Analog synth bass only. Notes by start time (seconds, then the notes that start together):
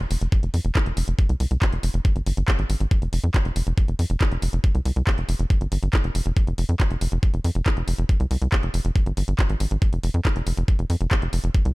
0.11 F1
0.21 F1
0.43 F1
0.54 F2
0.65 F1
0.86 F1
0.97 F1
1.08 F1
1.29 C2
1.40 C2
1.51 C2
1.73 F1
1.83 F1
1.94 F1
2.16 G1
2.26 G1
2.37 G1
2.59 G#1
2.70 G#1
2.80 G#1
3.02 F1
3.13 F1
3.24 F2
3.45 F1
3.56 F1
3.67 F1
3.88 F1
3.99 F2
4.10 F1
4.31 F1
4.42 F1
4.53 F1
4.75 C2
4.85 C2
4.96 C2
5.18 F1
5.29 F1
5.39 F1
5.61 G1
5.72 G1
5.83 G1
6.04 F1
6.15 F1
6.26 F1
6.47 F1
6.58 F1
6.69 F2
6.91 F1
7.01 F1
7.12 F1
7.34 F1
7.44 F2
7.55 F1
7.77 F1
7.88 F1
7.98 F1
8.20 C2
8.31 C2
8.42 C2
8.63 F1
8.74 F1
8.85 F1
9.06 G1
9.17 G1
9.28 G1
9.50 G#1
9.60 G#1
9.71 G#1
9.93 F1
10.03 F1
10.14 F2
10.36 F1
10.47 F1
10.57 F1
10.79 F1
10.90 F2
11.01 F1
11.22 F1
11.33 F1
11.44 F1
11.65 C2